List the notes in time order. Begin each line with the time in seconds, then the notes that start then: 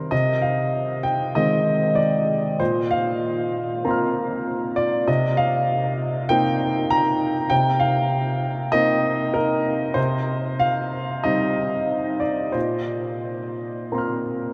Already playing: D#3 G3 C4 A#4 C5
0.11 C3 D#5
0.42 F5
1.03 G5
1.35 D#3 G#3 C4 D#5
1.95 D5
2.59 A#2 C5
2.91 F5
3.84 A#3 C4 F4 A#5 C6
3.91 F6
4.76 D5
5.08 C3 D#5
5.37 F5
6.29 A#3 C4 D#4 G5
6.90 A#5
7.50 C3 G5
7.80 F5
8.72 A#3 C4 D#4 D#5
9.34 A#4
9.94 C3 C5
10.60 F5
11.24 G3 C4 D#4 D#5
12.20 D5
12.52 A#2 C5
13.92 A#3 C4 F4 A#5 C6
13.98 F6